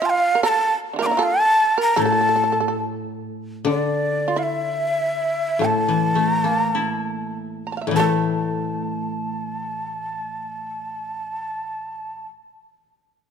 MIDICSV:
0, 0, Header, 1, 4, 480
1, 0, Start_track
1, 0, Tempo, 784314
1, 249, Time_signature, 4, 2, 24, 8
1, 1213, Tempo, 832178
1, 1693, Tempo, 864553
1, 2173, Tempo, 927357
1, 2653, Tempo, 1006711
1, 3133, Tempo, 1127820
1, 3613, Tempo, 1226994
1, 4573, Tempo, 1200000
1, 6217, End_track
2, 0, Start_track
2, 0, Title_t, "Shakuhachi"
2, 0, Program_c, 0, 77
2, 33, Note_on_c, 0, 81, 96
2, 59, Note_on_c, 0, 77, 105
2, 65, Note_off_c, 0, 81, 0
2, 259, Note_off_c, 0, 77, 0
2, 268, Note_on_c, 0, 82, 103
2, 294, Note_on_c, 0, 81, 112
2, 300, Note_off_c, 0, 82, 0
2, 441, Note_off_c, 0, 81, 0
2, 626, Note_on_c, 0, 86, 96
2, 649, Note_on_c, 0, 82, 104
2, 655, Note_off_c, 0, 86, 0
2, 751, Note_on_c, 0, 81, 115
2, 760, Note_off_c, 0, 82, 0
2, 1102, Note_off_c, 0, 81, 0
2, 1109, Note_on_c, 0, 82, 105
2, 1234, Note_on_c, 0, 81, 102
2, 1243, Note_off_c, 0, 82, 0
2, 1703, Note_off_c, 0, 81, 0
2, 2181, Note_on_c, 0, 74, 82
2, 2535, Note_on_c, 0, 77, 88
2, 2543, Note_off_c, 0, 74, 0
2, 2560, Note_on_c, 0, 76, 95
2, 2565, Note_off_c, 0, 77, 0
2, 3148, Note_on_c, 0, 81, 96
2, 3154, Note_off_c, 0, 76, 0
2, 3416, Note_off_c, 0, 81, 0
2, 3416, Note_on_c, 0, 82, 96
2, 3471, Note_off_c, 0, 82, 0
2, 3471, Note_on_c, 0, 81, 96
2, 3565, Note_off_c, 0, 81, 0
2, 3565, Note_on_c, 0, 82, 96
2, 3620, Note_off_c, 0, 82, 0
2, 3620, Note_on_c, 0, 81, 96
2, 3862, Note_off_c, 0, 81, 0
2, 4089, Note_on_c, 0, 81, 73
2, 5801, Note_off_c, 0, 81, 0
2, 6217, End_track
3, 0, Start_track
3, 0, Title_t, "Shamisen"
3, 0, Program_c, 1, 106
3, 11, Note_on_c, 1, 65, 78
3, 193, Note_off_c, 1, 65, 0
3, 215, Note_on_c, 1, 70, 71
3, 253, Note_off_c, 1, 70, 0
3, 265, Note_on_c, 1, 69, 101
3, 440, Note_off_c, 1, 69, 0
3, 572, Note_on_c, 1, 50, 41
3, 589, Note_on_c, 1, 52, 43
3, 604, Note_on_c, 1, 70, 94
3, 612, Note_off_c, 1, 50, 0
3, 615, Note_on_c, 1, 57, 50
3, 619, Note_on_c, 1, 53, 48
3, 636, Note_off_c, 1, 57, 0
3, 638, Note_on_c, 1, 58, 53
3, 646, Note_off_c, 1, 53, 0
3, 649, Note_on_c, 1, 62, 59
3, 667, Note_off_c, 1, 52, 0
3, 679, Note_off_c, 1, 70, 0
3, 682, Note_on_c, 1, 64, 61
3, 714, Note_off_c, 1, 62, 0
3, 717, Note_on_c, 1, 65, 67
3, 723, Note_off_c, 1, 64, 0
3, 724, Note_off_c, 1, 58, 0
3, 726, Note_on_c, 1, 69, 92
3, 794, Note_off_c, 1, 65, 0
3, 1065, Note_off_c, 1, 69, 0
3, 1087, Note_on_c, 1, 70, 81
3, 1199, Note_off_c, 1, 70, 0
3, 1201, Note_on_c, 1, 69, 80
3, 1248, Note_off_c, 1, 69, 0
3, 1255, Note_on_c, 1, 69, 56
3, 1288, Note_off_c, 1, 69, 0
3, 1295, Note_on_c, 1, 69, 61
3, 1337, Note_off_c, 1, 69, 0
3, 1344, Note_on_c, 1, 69, 55
3, 1382, Note_off_c, 1, 69, 0
3, 1389, Note_on_c, 1, 69, 57
3, 1424, Note_off_c, 1, 69, 0
3, 1430, Note_on_c, 1, 69, 53
3, 1468, Note_off_c, 1, 69, 0
3, 1475, Note_on_c, 1, 69, 55
3, 1519, Note_off_c, 1, 69, 0
3, 1525, Note_on_c, 1, 69, 52
3, 1565, Note_off_c, 1, 69, 0
3, 1572, Note_on_c, 1, 69, 55
3, 1609, Note_off_c, 1, 69, 0
3, 1616, Note_on_c, 1, 69, 52
3, 1659, Note_off_c, 1, 69, 0
3, 2168, Note_on_c, 1, 62, 68
3, 2462, Note_off_c, 1, 62, 0
3, 2483, Note_on_c, 1, 65, 58
3, 2526, Note_off_c, 1, 65, 0
3, 2528, Note_on_c, 1, 64, 76
3, 3113, Note_off_c, 1, 64, 0
3, 3134, Note_on_c, 1, 69, 80
3, 3840, Note_off_c, 1, 69, 0
3, 3976, Note_on_c, 1, 82, 34
3, 3996, Note_off_c, 1, 82, 0
3, 3997, Note_on_c, 1, 81, 36
3, 4015, Note_off_c, 1, 81, 0
3, 4016, Note_on_c, 1, 77, 38
3, 4032, Note_off_c, 1, 77, 0
3, 4033, Note_on_c, 1, 76, 40
3, 4060, Note_on_c, 1, 74, 45
3, 4084, Note_off_c, 1, 74, 0
3, 4086, Note_on_c, 1, 70, 47
3, 4104, Note_on_c, 1, 69, 80
3, 4119, Note_off_c, 1, 76, 0
3, 4166, Note_off_c, 1, 70, 0
3, 5816, Note_off_c, 1, 69, 0
3, 6217, End_track
4, 0, Start_track
4, 0, Title_t, "Koto"
4, 0, Program_c, 2, 107
4, 1207, Note_on_c, 2, 45, 67
4, 2155, Note_on_c, 2, 50, 66
4, 2170, Note_off_c, 2, 45, 0
4, 3123, Note_on_c, 2, 45, 58
4, 3249, Note_on_c, 2, 52, 43
4, 3363, Note_on_c, 2, 57, 43
4, 3485, Note_on_c, 2, 58, 42
4, 3606, Note_off_c, 2, 50, 0
4, 3616, Note_on_c, 2, 64, 42
4, 4050, Note_off_c, 2, 45, 0
4, 4055, Note_on_c, 2, 45, 57
4, 4067, Note_off_c, 2, 52, 0
4, 4071, Note_on_c, 2, 52, 53
4, 4087, Note_off_c, 2, 57, 0
4, 4092, Note_on_c, 2, 57, 56
4, 4457, Note_off_c, 2, 58, 0
4, 4574, Note_off_c, 2, 64, 0
4, 5782, Note_off_c, 2, 45, 0
4, 5799, Note_off_c, 2, 52, 0
4, 5820, Note_off_c, 2, 57, 0
4, 6217, End_track
0, 0, End_of_file